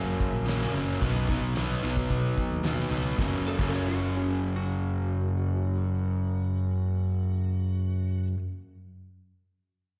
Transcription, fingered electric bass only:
0.00 0.14 F#2 medium
0.33 0.65 A#1 medium
0.74 0.95 F#1 medium
1.02 1.34 B1 medium
1.41 1.74 B1 medium
1.82 2.04 B1 medium
2.10 2.31 B2 loud
2.51 2.83 D#2 medium
2.91 3.12 C#2 medium
3.19 3.33 F#1 medium
3.59 8.32 F#1 medium

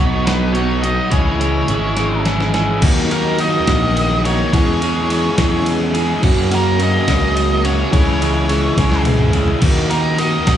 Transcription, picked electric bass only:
0.00 0.98 B1 medium
1.12 1.62 C#2 medium
1.69 2.69 G#1 medium
2.82 3.57 D#2 loud
3.67 4.42 A#1 loud
4.54 5.28 E2 medium
5.38 6.13 E2 loud
6.23 6.97 F#2 medium
7.08 7.82 C#2 loud
7.93 8.67 C#2 medium
8.77 9.52 C#2 loud
9.62 10.37 D#2 medium
10.47 10.57 A#1 loud

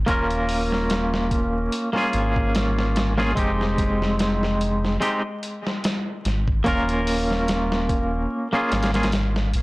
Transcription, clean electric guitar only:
0.06 1.89 A#3 loud
0.06 1.89 C#4 medium
0.06 1.90 F4 medium
0.11 1.91 A#4 loud
1.93 3.12 A#3 medium
1.93 3.13 C#4 medium
1.93 3.13 F4 medium
1.98 3.14 G#4 loud
3.18 3.32 A#3 medium
3.18 3.32 C#4 medium
3.18 3.33 F4 medium
3.18 3.33 G#4 medium
3.35 4.96 G#3 medium
3.35 4.96 C4 medium
3.35 4.97 D#4 medium
3.35 4.98 G4 medium
5.00 5.21 G#3 medium
5.00 5.21 C4 medium
5.00 5.22 D#4 medium
5.00 5.22 G4 medium
6.64 8.47 A#3 loud
6.64 8.47 C#4 medium
6.64 8.48 F4 medium
6.64 8.49 A#4 loud
8.53 8.89 A#3 medium
8.53 8.90 C#4 medium
8.53 8.90 F4 medium
8.53 8.90 G#4 loud
8.94 9.10 A#3 medium
8.94 9.11 C#4 medium
8.94 9.11 F4 medium
8.94 9.11 G#4 medium

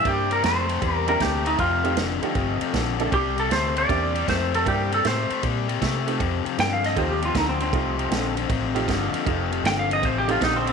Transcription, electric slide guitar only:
0.07 0.31 G4 medium
0.33 0.44 A#4 medium
0.46 0.96 C5 medium
0.96 1.07 A#4 medium
1.09 1.21 A#4 medium
1.22 1.46 G4 medium
1.47 1.59 D#4 medium
1.60 1.97 F4 loud
3.14 3.38 G4 medium
3.40 3.51 A4 medium
3.52 3.77 C5 medium
3.78 4.27 D5 loud
4.29 4.54 C5 medium
4.55 4.67 A4 medium
4.68 4.92 G4 medium
4.94 5.06 A4 medium
5.07 5.43 C5 medium
6.60 6.71 G5 medium
6.73 6.84 F5 medium
6.86 6.97 D#5 medium
6.98 7.10 C5 medium
7.11 7.22 G4 medium
7.25 7.36 F4 medium
7.37 7.49 D#4 medium
7.49 7.61 C4 medium
7.62 8.73 C4 medium
9.67 9.78 G5 loud
9.79 9.91 F5 medium
9.93 10.04 D#5 medium
10.05 10.16 C5 medium
10.18 10.29 G4 medium
10.31 10.42 F4 medium
10.44 10.55 D#4 medium
10.56 10.67 C4 medium
10.69 10.73 C4 medium

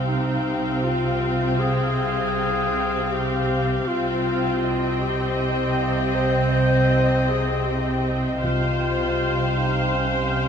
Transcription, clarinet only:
0.08 0.85 D#4 medium
0.84 1.61 F4 medium
1.60 3.14 G#4 medium
3.12 3.89 G4 medium
3.88 5.03 F4 medium
5.02 6.17 G4 medium
6.15 7.28 C5 medium
7.29 7.69 G#4 medium
7.67 8.16 G4 medium
8.43 9.59 F4 medium
9.57 9.96 D#4 medium
9.95 10.48 C#4 soft

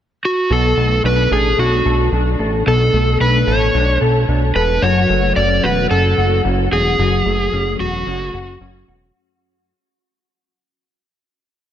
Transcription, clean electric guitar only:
0.50 2.65 B2 medium
0.50 1.31 A4 medium
0.77 2.92 A3 medium
1.04 1.57 D4 medium
1.31 1.85 A4 medium
1.59 2.11 D4 medium
1.86 2.39 A4 medium
2.12 3.19 D4 medium
2.39 2.66 A4 medium
2.66 4.82 B2 medium
2.66 3.47 A4 medium
2.93 5.09 A3 medium
3.20 3.73 D4 medium
3.47 4.01 A4 medium
3.74 4.27 D4 medium
4.01 4.55 A4 medium
4.28 4.88 D4 medium
4.55 4.82 A4 medium
4.82 6.98 F#2 medium
4.82 5.62 F#4 medium
5.09 7.25 A3 medium
5.36 5.90 C#4 medium
5.63 6.17 F#4 medium
5.90 6.44 C#4 medium
6.17 6.71 F#4 medium
6.44 7.52 C#4 medium
6.71 6.99 F#4 medium
6.99 9.70 F#2 medium
6.99 7.79 F#4 medium
7.25 9.70 A3 medium
7.52 8.06 C#4 medium
7.79 8.33 F#4 medium
8.07 8.60 C#4 medium
8.33 8.87 F#4 medium
8.61 9.70 C#4 medium
8.88 9.70 F#4 medium

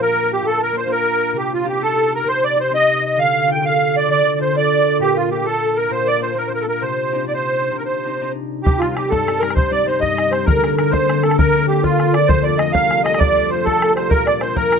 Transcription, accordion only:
0.02 0.32 A#4 medium
0.33 0.46 G4 medium
0.46 0.61 A4 medium
0.63 0.76 A#4 medium
0.77 0.91 C5 medium
0.92 1.37 A#4 medium
1.38 1.52 G4 medium
1.54 1.67 F4 medium
1.69 1.82 G4 medium
1.83 2.13 A4 medium
2.15 2.28 A#4 medium
2.28 2.44 C5 loud
2.44 2.58 D5 medium
2.60 2.72 C5 medium
2.75 3.04 D#5 loud
3.06 3.19 D#5 medium
3.19 3.50 F5 loud
3.51 3.65 G5 medium
3.65 3.96 F5 medium
3.97 4.10 D5 medium
4.11 4.33 D5 loud
4.35 4.39 D5 medium
4.42 4.56 C5 medium
4.57 4.98 D5 loud
5.01 5.17 G4 loud
5.16 5.30 F4 medium
5.31 5.46 G4 medium
5.46 5.77 A4 medium
5.77 5.91 A#4 medium
5.92 6.08 C5 medium
6.07 6.21 D5 loud
6.22 6.37 C5 medium
6.38 6.49 A#4 medium
6.48 6.52 C5 medium
6.55 6.64 A#4 medium
6.61 6.66 A4 medium
6.69 6.83 A#4 medium
6.82 7.25 C5 medium
7.28 7.33 D5 medium
7.34 7.77 C5 medium
7.78 7.83 A#4 medium
7.86 8.32 C5 medium
8.63 8.80 G4 medium
8.79 8.95 F4 medium
8.95 9.10 G4 medium
9.10 9.41 A4 medium
9.39 9.53 A#4 medium
9.55 9.72 C5 medium
9.72 9.87 D5 medium
9.87 10.00 C5 medium
10.01 10.32 D#5 medium
10.31 10.45 C5 medium
10.46 10.75 A#4 medium
10.77 10.92 A#4 medium
10.91 11.23 C5 medium
11.23 11.36 A4 medium
11.38 11.66 A#4 loud
11.68 11.83 G4 medium
11.83 12.14 F4 medium
12.13 12.28 D5 medium
12.28 12.44 C5 loud
12.43 12.59 D5 medium
12.58 12.72 D#5 medium
12.73 13.02 F5 medium
13.04 13.19 D#5 loud
13.18 13.50 D5 loud
13.50 13.65 C5 medium
13.65 13.93 A4 loud
13.96 14.11 C5 medium
14.10 14.26 A#4 medium
14.27 14.41 D5 medium
14.41 14.56 C5 medium
14.56 14.80 A#4 medium

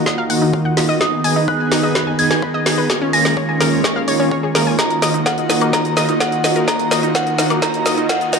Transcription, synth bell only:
0.00 0.91 F#5 loud
1.01 1.43 D#6 loud
1.48 2.09 F#6 medium
2.19 3.04 G#6 loud
3.13 4.69 A#6 medium
4.79 5.21 A#5 medium
5.26 5.71 F#5 medium
5.73 6.16 A#5 medium
6.20 6.66 F#5 medium
6.68 7.10 A#5 loud
7.15 7.60 F#5 medium
7.62 8.05 A#5 medium
8.09 8.39 F#5 medium

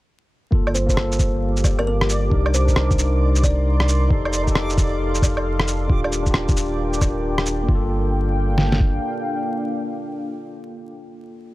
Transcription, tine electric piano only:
0.51 0.85 A#3 medium
0.51 0.86 F4 medium
0.55 0.87 A4 medium
0.86 2.28 A#3 medium
0.86 2.30 F4 medium
0.94 2.32 A4 medium
2.30 2.64 D4 medium
2.30 2.65 D#4 medium
2.30 2.66 A#4 medium
2.65 4.07 D4 medium
2.65 4.07 D#4 medium
2.73 4.11 A#4 medium
4.08 4.42 D#4 medium
4.08 4.44 G4 medium
4.08 4.45 A4 medium
4.43 5.86 D#4 medium
4.48 5.88 G4 medium
4.48 5.90 A4 loud
5.88 6.22 D4 medium
5.88 6.23 F4 medium
5.88 6.24 G4 medium
6.23 6.96 D4 medium
6.27 7.00 F4 medium
6.27 7.02 G4 medium
6.98 7.65 D4 medium
6.98 7.67 F4 medium
7.06 7.69 G4 medium
7.63 10.65 A#3 medium
7.69 10.71 F4 medium
7.75 10.77 A4 medium

